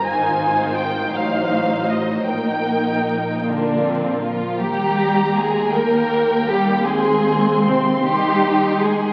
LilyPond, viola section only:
\new Staff \with { instrumentName = "Viola section" } { \time 6/8 \key ees \major \tempo 4. = 53 << { ees'4. ees'4. | ees'4. bes8 c'8 bes8 | r4. bes4. | c'4. ees'4. | } \\ { ees8. ees8. fis4. | bes4. r4. | r2. | r2. | } >> }